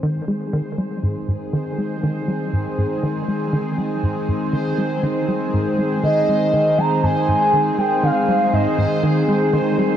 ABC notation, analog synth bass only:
X:1
M:4/4
L:1/8
Q:1/4=120
K:Ablyd
V:1 name="Analog synth bass" clef=bass
E, A, E, G, A,, A,, E, A, | E, G, A,, A,, E, A, E, G, | A,, A,, E, A, E, G, A,, A, | E, A, E, G, A,, A,, E, A, |
E, G, A,, A,, E, A, E, G, |]